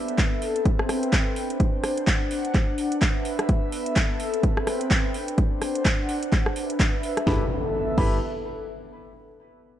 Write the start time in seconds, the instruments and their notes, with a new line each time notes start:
Already playing: analog synth pad B3 E5
0.04 analog synth pad A4
0.08 closed hi-hat
0.18 kick, clap, closed hi-hat
0.42 analog synth pad C4, open hi-hat
0.56 closed hi-hat
0.65 kick, closed hi-hat
0.79 analog synth pad B4 G5, cross-stick
0.89 cross-stick, open hi-hat
1.03 closed hi-hat
1.13 kick, clap, closed hi-hat
1.36 analog synth pad D4, open hi-hat
1.46 analog synth pad C5, closed hi-hat
1.60 kick, closed hi-hat
1.84 cross-stick, open hi-hat
1.91 analog synth pad F#5
1.97 closed hi-hat
2.07 kick, clap, closed hi-hat
2.31 open hi-hat
2.45 closed hi-hat
2.54 kick, clap, closed hi-hat
2.78 open hi-hat
2.92 analog synth pad B4, closed hi-hat
2.98 analog synth pad E5, closed hi-hat
3.02 kick, clap
3.25 open hi-hat
3.39 cross-stick, closed hi-hat
3.49 analog synth pad B3, kick, closed hi-hat
3.72 open hi-hat
3.82 analog synth pad A4, closed hi-hat
3.96 kick, clap, closed hi-hat
4.20 analog synth pad C4, open hi-hat
4.34 analog synth pad B4, closed hi-hat
4.43 kick, closed hi-hat
4.57 cross-stick
4.63 analog synth pad G5, cross-stick, open hi-hat
4.81 closed hi-hat
4.91 kick, clap, closed hi-hat
5.14 analog synth pad D4, open hi-hat
5.28 closed hi-hat
5.38 kick, closed hi-hat
5.42 analog synth pad C5
5.62 cross-stick, open hi-hat
5.68 analog synth pad F#5
5.75 closed hi-hat
5.85 kick, clap, closed hi-hat
6.09 open hi-hat
6.23 closed hi-hat
6.32 kick, clap, closed hi-hat
6.46 cross-stick
6.51 analog synth pad B4
6.56 analog synth pad E5, open hi-hat
6.70 closed hi-hat
6.80 kick, clap, closed hi-hat
7.03 open hi-hat
7.17 cross-stick, closed hi-hat
7.27 fm bass G1, analog synth pad B3, grand piano E4 G4 A4 B4, kick, snare, impact
7.35 analog synth pad A4
7.43 analog synth pad E5
7.98 fm bass G1, grand piano E4 G4 A4 B4, kick, crash